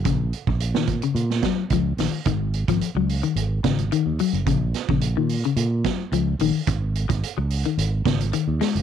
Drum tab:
HH |x-x-x-xxx-x-x-o-|x-xxx-oxx-xxx-ox|x-x-x-oxx-x-x-o-|x-xxx-oxx-xxx-ox|
SD |-----o---oo---o-|----------o-----|--o-------o-----|----------o---o-|
BD |o--o--o---o-o---|o--o------o-----|o--o------o-----|o--o------o-----|